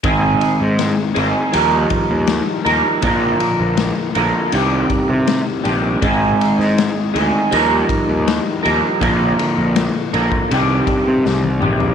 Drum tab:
RD |x-x-x-x-x-x-x-x-|x-x-x-x-x-x-x-x-|x-x-x-x-x-x-x-x-|x-x-x-x-x-x-----|
SD |----o-------o---|----o-------o---|---oo-------o---|----o-------o---|
T1 |----------------|----------------|----------------|-------------o--|
T2 |----------------|----------------|----------------|--------------o-|
FT |----------------|----------------|----------------|---------------o|
BD |o---------o-----|o---------o-----|o---------o-----|o------o--o-----|